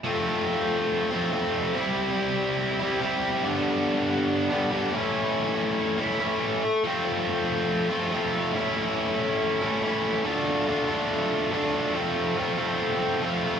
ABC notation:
X:1
M:4/4
L:1/8
Q:1/4=141
K:Ddor
V:1 name="Overdriven electric guitar"
[F,A,CF]4- [F,A,CF] [F,A,CF] [F,A,CF]2 | [C,G,CE]4- [C,G,CE] [C,G,CE] [C,G,CE]2 | [G,,D,G,B,D]4- [G,,D,G,B,D] [G,,D,G,B,D] [G,,D,G,B,D] [A,,E,A,^CE]- | [A,,E,A,^CE]4 [A,,E,A,CE] [A,,E,A,CE]2 z |
[F,A,CF]4- [F,A,CF] [F,A,CF] [F,A,CF]2 | [A,,E,A,^CE]4- [A,,E,A,CE] [A,,E,A,CE] [A,,E,A,CE]2 | [D,A,DF]2 [D,A,DF] [A,DF]3 [D,A,DF] [A,DF] | [F,A,CF]2 [F,A,CF] [A,CF]3 [F,A,CF] [A,CF] |]